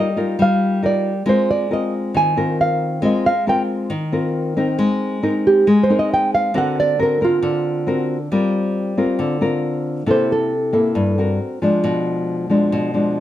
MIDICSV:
0, 0, Header, 1, 3, 480
1, 0, Start_track
1, 0, Tempo, 440852
1, 1371, Time_signature, 4, 2, 24, 8
1, 14373, End_track
2, 0, Start_track
2, 0, Title_t, "Nylon-string guitar"
2, 0, Program_c, 0, 24
2, 0, Note_on_c, 0, 75, 73
2, 188, Note_off_c, 0, 75, 0
2, 459, Note_on_c, 0, 77, 89
2, 883, Note_off_c, 0, 77, 0
2, 935, Note_on_c, 0, 74, 72
2, 1361, Note_off_c, 0, 74, 0
2, 1407, Note_on_c, 0, 72, 70
2, 1622, Note_off_c, 0, 72, 0
2, 1640, Note_on_c, 0, 74, 79
2, 1858, Note_off_c, 0, 74, 0
2, 1887, Note_on_c, 0, 75, 69
2, 2102, Note_off_c, 0, 75, 0
2, 2360, Note_on_c, 0, 80, 95
2, 2792, Note_off_c, 0, 80, 0
2, 2840, Note_on_c, 0, 77, 82
2, 3272, Note_off_c, 0, 77, 0
2, 3325, Note_on_c, 0, 75, 64
2, 3540, Note_off_c, 0, 75, 0
2, 3553, Note_on_c, 0, 77, 81
2, 3774, Note_off_c, 0, 77, 0
2, 3802, Note_on_c, 0, 79, 90
2, 3936, Note_off_c, 0, 79, 0
2, 5955, Note_on_c, 0, 67, 80
2, 6197, Note_off_c, 0, 67, 0
2, 6197, Note_on_c, 0, 68, 75
2, 6338, Note_off_c, 0, 68, 0
2, 6353, Note_on_c, 0, 72, 76
2, 6495, Note_off_c, 0, 72, 0
2, 6524, Note_on_c, 0, 75, 72
2, 6661, Note_off_c, 0, 75, 0
2, 6681, Note_on_c, 0, 79, 90
2, 6897, Note_off_c, 0, 79, 0
2, 6909, Note_on_c, 0, 77, 96
2, 7131, Note_off_c, 0, 77, 0
2, 7162, Note_on_c, 0, 78, 85
2, 7377, Note_off_c, 0, 78, 0
2, 7401, Note_on_c, 0, 74, 91
2, 7617, Note_off_c, 0, 74, 0
2, 7651, Note_on_c, 0, 70, 72
2, 7862, Note_off_c, 0, 70, 0
2, 7888, Note_on_c, 0, 65, 75
2, 8904, Note_off_c, 0, 65, 0
2, 11005, Note_on_c, 0, 72, 76
2, 11220, Note_off_c, 0, 72, 0
2, 11239, Note_on_c, 0, 69, 82
2, 11672, Note_off_c, 0, 69, 0
2, 14373, End_track
3, 0, Start_track
3, 0, Title_t, "Nylon-string guitar"
3, 0, Program_c, 1, 24
3, 0, Note_on_c, 1, 55, 74
3, 181, Note_on_c, 1, 63, 67
3, 187, Note_on_c, 1, 65, 60
3, 191, Note_on_c, 1, 70, 62
3, 393, Note_off_c, 1, 55, 0
3, 423, Note_on_c, 1, 55, 72
3, 857, Note_off_c, 1, 63, 0
3, 860, Note_off_c, 1, 65, 0
3, 863, Note_off_c, 1, 70, 0
3, 898, Note_on_c, 1, 63, 54
3, 901, Note_on_c, 1, 65, 55
3, 908, Note_on_c, 1, 70, 57
3, 1217, Note_off_c, 1, 63, 0
3, 1220, Note_off_c, 1, 65, 0
3, 1221, Note_off_c, 1, 70, 0
3, 1353, Note_off_c, 1, 55, 0
3, 1369, Note_on_c, 1, 56, 73
3, 1374, Note_on_c, 1, 60, 53
3, 1376, Note_on_c, 1, 65, 55
3, 1383, Note_on_c, 1, 70, 67
3, 1812, Note_off_c, 1, 60, 0
3, 1815, Note_off_c, 1, 65, 0
3, 1819, Note_off_c, 1, 70, 0
3, 1857, Note_on_c, 1, 60, 46
3, 1861, Note_on_c, 1, 65, 53
3, 1865, Note_on_c, 1, 70, 54
3, 2306, Note_off_c, 1, 56, 0
3, 2334, Note_on_c, 1, 51, 69
3, 2535, Note_off_c, 1, 60, 0
3, 2537, Note_off_c, 1, 65, 0
3, 2538, Note_off_c, 1, 70, 0
3, 2577, Note_on_c, 1, 60, 55
3, 2585, Note_on_c, 1, 65, 53
3, 2586, Note_on_c, 1, 70, 71
3, 3255, Note_off_c, 1, 60, 0
3, 3257, Note_off_c, 1, 65, 0
3, 3259, Note_off_c, 1, 70, 0
3, 3268, Note_off_c, 1, 51, 0
3, 3288, Note_on_c, 1, 56, 66
3, 3290, Note_on_c, 1, 60, 67
3, 3296, Note_on_c, 1, 65, 55
3, 3301, Note_on_c, 1, 70, 58
3, 3598, Note_off_c, 1, 60, 0
3, 3602, Note_off_c, 1, 65, 0
3, 3604, Note_off_c, 1, 70, 0
3, 3774, Note_on_c, 1, 60, 53
3, 3780, Note_on_c, 1, 65, 56
3, 3785, Note_on_c, 1, 70, 59
3, 4224, Note_off_c, 1, 56, 0
3, 4243, Note_on_c, 1, 51, 72
3, 4248, Note_off_c, 1, 60, 0
3, 4252, Note_off_c, 1, 65, 0
3, 4253, Note_off_c, 1, 70, 0
3, 4490, Note_on_c, 1, 60, 59
3, 4495, Note_on_c, 1, 65, 55
3, 4498, Note_on_c, 1, 70, 64
3, 4931, Note_off_c, 1, 60, 0
3, 4933, Note_off_c, 1, 65, 0
3, 4935, Note_off_c, 1, 70, 0
3, 4972, Note_on_c, 1, 60, 63
3, 4978, Note_on_c, 1, 63, 63
3, 4984, Note_on_c, 1, 70, 64
3, 5181, Note_off_c, 1, 51, 0
3, 5211, Note_on_c, 1, 56, 78
3, 5651, Note_off_c, 1, 60, 0
3, 5654, Note_off_c, 1, 63, 0
3, 5657, Note_off_c, 1, 70, 0
3, 5690, Note_on_c, 1, 60, 58
3, 5698, Note_on_c, 1, 63, 61
3, 5699, Note_on_c, 1, 70, 55
3, 6145, Note_off_c, 1, 56, 0
3, 6166, Note_off_c, 1, 60, 0
3, 6168, Note_off_c, 1, 63, 0
3, 6170, Note_off_c, 1, 70, 0
3, 6175, Note_on_c, 1, 56, 73
3, 6420, Note_on_c, 1, 60, 58
3, 6425, Note_on_c, 1, 63, 60
3, 6430, Note_on_c, 1, 70, 65
3, 7095, Note_off_c, 1, 60, 0
3, 7097, Note_off_c, 1, 63, 0
3, 7100, Note_off_c, 1, 70, 0
3, 7107, Note_off_c, 1, 56, 0
3, 7123, Note_on_c, 1, 50, 72
3, 7128, Note_on_c, 1, 60, 54
3, 7129, Note_on_c, 1, 66, 54
3, 7134, Note_on_c, 1, 70, 64
3, 7568, Note_off_c, 1, 60, 0
3, 7569, Note_off_c, 1, 66, 0
3, 7572, Note_off_c, 1, 70, 0
3, 7608, Note_on_c, 1, 60, 50
3, 7615, Note_on_c, 1, 66, 49
3, 7617, Note_on_c, 1, 70, 67
3, 7809, Note_off_c, 1, 60, 0
3, 7810, Note_off_c, 1, 66, 0
3, 7813, Note_off_c, 1, 70, 0
3, 7849, Note_on_c, 1, 60, 54
3, 7860, Note_on_c, 1, 70, 66
3, 8061, Note_off_c, 1, 50, 0
3, 8084, Note_on_c, 1, 50, 71
3, 8530, Note_off_c, 1, 60, 0
3, 8535, Note_off_c, 1, 70, 0
3, 8567, Note_on_c, 1, 60, 62
3, 8574, Note_on_c, 1, 66, 59
3, 8579, Note_on_c, 1, 70, 63
3, 8889, Note_off_c, 1, 60, 0
3, 8893, Note_off_c, 1, 66, 0
3, 8895, Note_off_c, 1, 70, 0
3, 9021, Note_off_c, 1, 50, 0
3, 9055, Note_on_c, 1, 55, 68
3, 9059, Note_on_c, 1, 60, 58
3, 9062, Note_on_c, 1, 65, 60
3, 9067, Note_on_c, 1, 70, 62
3, 9734, Note_off_c, 1, 60, 0
3, 9736, Note_off_c, 1, 65, 0
3, 9739, Note_off_c, 1, 70, 0
3, 9772, Note_on_c, 1, 60, 64
3, 9776, Note_on_c, 1, 65, 59
3, 9781, Note_on_c, 1, 70, 58
3, 9988, Note_off_c, 1, 55, 0
3, 10004, Note_on_c, 1, 50, 70
3, 10211, Note_off_c, 1, 60, 0
3, 10214, Note_off_c, 1, 65, 0
3, 10216, Note_off_c, 1, 70, 0
3, 10245, Note_on_c, 1, 60, 52
3, 10250, Note_on_c, 1, 65, 55
3, 10255, Note_on_c, 1, 70, 67
3, 10928, Note_off_c, 1, 60, 0
3, 10931, Note_off_c, 1, 65, 0
3, 10934, Note_off_c, 1, 70, 0
3, 10943, Note_off_c, 1, 50, 0
3, 10958, Note_on_c, 1, 48, 65
3, 10963, Note_on_c, 1, 58, 58
3, 10969, Note_on_c, 1, 69, 63
3, 10971, Note_on_c, 1, 64, 62
3, 11443, Note_off_c, 1, 58, 0
3, 11444, Note_off_c, 1, 64, 0
3, 11446, Note_off_c, 1, 69, 0
3, 11678, Note_on_c, 1, 58, 59
3, 11686, Note_on_c, 1, 64, 59
3, 11687, Note_on_c, 1, 69, 66
3, 11902, Note_off_c, 1, 48, 0
3, 11923, Note_on_c, 1, 43, 70
3, 12127, Note_off_c, 1, 58, 0
3, 12128, Note_off_c, 1, 64, 0
3, 12131, Note_off_c, 1, 69, 0
3, 12172, Note_on_c, 1, 60, 53
3, 12179, Note_on_c, 1, 66, 53
3, 12187, Note_on_c, 1, 70, 65
3, 12383, Note_off_c, 1, 43, 0
3, 12613, Note_off_c, 1, 60, 0
3, 12617, Note_off_c, 1, 66, 0
3, 12619, Note_off_c, 1, 70, 0
3, 12650, Note_on_c, 1, 53, 68
3, 12655, Note_on_c, 1, 56, 65
3, 12663, Note_on_c, 1, 62, 77
3, 12888, Note_on_c, 1, 47, 76
3, 13574, Note_off_c, 1, 53, 0
3, 13577, Note_off_c, 1, 56, 0
3, 13579, Note_off_c, 1, 62, 0
3, 13606, Note_on_c, 1, 53, 56
3, 13613, Note_on_c, 1, 56, 55
3, 13619, Note_on_c, 1, 62, 64
3, 13827, Note_off_c, 1, 47, 0
3, 13854, Note_on_c, 1, 47, 72
3, 14052, Note_off_c, 1, 53, 0
3, 14055, Note_off_c, 1, 56, 0
3, 14058, Note_off_c, 1, 62, 0
3, 14087, Note_on_c, 1, 53, 58
3, 14092, Note_on_c, 1, 56, 55
3, 14097, Note_on_c, 1, 62, 64
3, 14373, Note_off_c, 1, 47, 0
3, 14373, Note_off_c, 1, 53, 0
3, 14373, Note_off_c, 1, 56, 0
3, 14373, Note_off_c, 1, 62, 0
3, 14373, End_track
0, 0, End_of_file